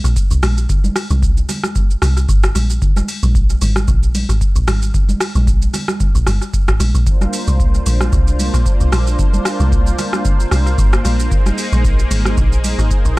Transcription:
0.04 log drum bass A#1, shaker
0.16 kick, shaker
0.31 log drum bass C2, shaker
0.43 log drum bass A#1, cross-stick, open hi-hat, high conga, shaker
0.57 shaker
0.69 kick, low conga, shaker
0.84 high conga, shaker
0.96 cross-stick, open hi-hat, shaker
1.10 log drum bass C2, high conga, shaker
1.23 kick, shaker
1.37 shaker
1.49 open hi-hat, high conga, low conga, shaker
1.63 cross-stick, high conga, shaker
1.75 kick, low conga, shaker
1.90 shaker
2.02 log drum bass C2, cross-stick, open hi-hat, high conga, shaker
2.17 shaker
2.29 log drum bass G1, kick, shaker
2.43 cross-stick, shaker
2.55 log drum bass A#1, open hi-hat, high conga, shaker
2.70 shaker
2.82 kick, low conga, shaker
2.96 high conga, shaker
3.08 open hi-hat, shaker
3.23 log drum bass A#1, high conga, shaker
3.35 kick, shaker
3.50 shaker
3.61 log drum bass G#1, open hi-hat, high conga, low conga, shaker
3.76 cross-stick, high conga, shaker
3.88 log drum bass A#1, kick, low conga, shaker
4.03 shaker
4.15 open hi-hat, high conga, shaker
4.29 log drum bass G#1, shaker
4.41 kick, shaker
4.56 log drum bass A#1, shaker
4.67 log drum bass G#1, cross-stick, open hi-hat, high conga, shaker
4.82 shaker
4.94 kick, low conga, shaker
5.09 high conga, shaker
5.21 cross-stick, open hi-hat, shaker
5.35 log drum bass A#1, high conga, shaker
5.47 kick, shaker
5.62 shaker
5.74 open hi-hat, high conga, low conga, shaker
5.88 cross-stick, high conga, shaker
6.00 kick, low conga, shaker
6.15 log drum bass A#1, shaker
6.27 log drum bass G1, cross-stick, open hi-hat, high conga, shaker
6.42 shaker
6.54 kick, shaker
6.68 log drum bass G#1, cross-stick, shaker
6.80 log drum bass A#1, open hi-hat, high conga, shaker
6.95 log drum bass A#1, shaker
7.07 analog synth pad A#3 D4 F4 C5, kick, low conga, shaker
7.21 high conga, shaker
7.33 open hi-hat, shaker
7.47 log drum bass C2, high conga, shaker
7.60 kick, shaker
7.74 shaker
7.86 log drum bass A#1, open hi-hat, high conga, low conga, shaker
8.01 cross-stick, high conga, shaker
8.12 log drum bass C2, kick, low conga, shaker
8.28 shaker
8.39 open hi-hat, high conga, shaker
8.54 log drum bass A#1, shaker
8.66 kick, shaker
8.80 log drum bass C2, shaker
8.92 log drum bass A#1, cross-stick, open hi-hat, high conga, shaker
9.07 shaker
9.19 kick, low conga, shaker
9.34 high conga, shaker
9.45 cross-stick, open hi-hat, shaker
9.60 log drum bass C2, high conga, shaker
9.72 kick, shaker
9.87 shaker
9.99 open hi-hat, high conga, low conga, shaker
10.13 cross-stick, high conga, shaker
10.25 kick, low conga, shaker
10.40 shaker
10.51 log drum bass C2, cross-stick, open hi-hat, high conga, shaker
10.67 shaker
10.78 log drum bass G1, kick, shaker
10.93 cross-stick, shaker
11.05 log drum bass A#1, open hi-hat, high conga, shaker
11.20 shaker
11.31 analog synth pad D#4 G#4 C5, kick, low conga, shaker
11.46 high conga, shaker
11.58 open hi-hat, shaker
11.72 log drum bass A#1, high conga, shaker
11.85 kick, shaker
11.99 shaker
12.11 log drum bass G#1, open hi-hat, high conga, low conga, shaker
12.25 cross-stick, high conga, shaker
12.37 log drum bass A#1, kick, low conga, shaker
12.52 shaker
12.64 open hi-hat, high conga, shaker
12.79 log drum bass G#1, shaker
12.91 kick, shaker
13.05 log drum bass A#1, shaker

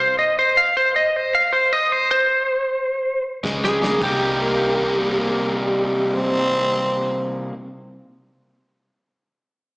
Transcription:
0.00 lead electric guitar C5
0.19 lead electric guitar D#5
0.39 lead electric guitar C5
0.57 lead electric guitar F5
0.77 lead electric guitar C5
0.96 lead electric guitar D#5
1.16 lead electric guitar C5
1.35 lead electric guitar F5
1.53 lead electric guitar C5
1.73 lead electric guitar D#5
1.92 lead electric guitar C5
2.11 lead electric guitar C5
3.44 fingered electric bass C#2, overdriven electric guitar C#3 G#3, kick, snare
3.64 lead electric guitar G#4, snare
3.81 overdriven electric guitar C#3 A#3, snare
4.00 fingered electric bass C2, overdriven electric guitar C3 G3 A#3, lead electric guitar G4, kick, crash
4.04 overdriven electric guitar D#4
4.41 tenor saxophone A#3
4.99 tenor saxophone G3
5.18 tenor saxophone A#3
5.56 tenor saxophone G3
6.15 tenor saxophone C4

